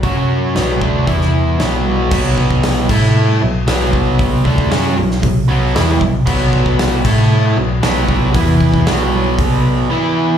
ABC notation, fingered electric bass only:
X:1
M:4/4
L:1/8
Q:1/4=115
K:Bm
V:1 name="Fingered electric bass" clef=bass
F,,2 B,,, D,, E,,2 B,,,2 | B,,,3 A,,2 B,,, B,,,2- | B,,, D,, F,, B,,, B,,, B,,, E,, B,,, | B,,,3 A,,2 B,,, B,,,2 |
E,,2 B,,,4 z2 |]